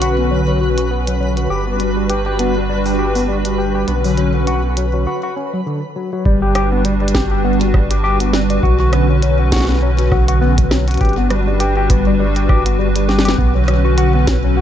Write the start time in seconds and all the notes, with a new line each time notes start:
Already playing: B1 D3 C#4 F#4 B4
0.02 F#4, closed hi-hat
0.18 B3
0.31 F#3
0.48 F#3
0.61 F#4
0.78 F#4, closed hi-hat
0.91 B3
1.07 F#3, closed hi-hat
1.21 F#3
1.37 F#4, closed hi-hat
1.50 G1 G3 D4 F#4 G4 B4
1.67 B3
1.80 G3, closed hi-hat
1.97 G3
2.10 G4, closed hi-hat
2.26 G4
2.39 B3, closed hi-hat
2.56 G3
2.69 G3
2.86 G4, open hi-hat
2.99 G4
3.15 B3, open hi-hat
3.28 G3
3.45 G3, closed hi-hat
3.58 G4
3.75 G4
3.88 B1 D3 B3 C#4 B4, closed hi-hat
4.04 F#3, open hi-hat
4.17 F#3, closed hi-hat
4.34 F#4
4.47 F#4, closed hi-hat
4.64 B3
4.77 F#3, closed hi-hat
4.94 F#3
5.07 F#4
5.23 F#4
5.36 C#4
5.53 F#3
5.66 D3
5.96 F#3
6.12 F#3
6.25 G1 G3 D4 F#4 B4, kick
6.42 G4
6.55 G4, cross-stick, closed hi-hat
6.72 B3
6.85 G3, closed hi-hat
7.02 G3
7.08 closed hi-hat
7.15 G4, kick, cross-stick, snare
7.31 G4
7.44 B3
7.61 G3, closed hi-hat
7.74 G3, kick, cross-stick
7.91 G4, closed hi-hat
8.04 G4
8.20 B3, closed hi-hat
8.33 G3, snare
8.50 G3, closed hi-hat
8.63 B1 D3 C#4 F#4, kick
8.80 F#4
8.93 B3, cross-stick, closed hi-hat
9.09 F#3
9.22 F#3, closed hi-hat
9.39 F#4
9.52 F#4, kick, snare, closed hi-hat
9.56 snare
9.60 snare
9.65 snare
9.69 B3, snare
9.72 snare
9.75 snare
9.79 F#3, snare
9.99 F#3, closed hi-hat
10.12 F#4, kick, cross-stick
10.28 F#4, closed hi-hat
10.41 B3
10.58 F#3, kick, closed hi-hat
10.71 F#3, cross-stick, snare
10.88 F#4, closed hi-hat
10.91 closed hi-hat
10.94 closed hi-hat
10.97 G1 G3 D4 F#4 G4 B4, kick, closed hi-hat
11.05 closed hi-hat
11.09 closed hi-hat
11.13 closed hi-hat
11.17 B3
11.30 G3, cross-stick, closed hi-hat
11.47 G3
11.60 G4, closed hi-hat
11.77 G4
11.90 B3, kick, cross-stick, closed hi-hat
12.07 G3
12.20 G3
12.36 G4, closed hi-hat
12.49 G4, kick, cross-stick
12.66 B3, closed hi-hat
12.79 G3
12.96 G3, closed hi-hat
13.09 G4, snare
13.19 snare
13.25 G4, snare, closed hi-hat
13.38 B1 D3 B3 C#4 F#4, kick
13.55 F#3
13.68 F#3, cross-stick, closed hi-hat
13.85 F#4
13.98 F#4, closed hi-hat
14.14 B3
14.27 F#3, kick, snare, closed hi-hat
14.44 F#3
14.57 F#4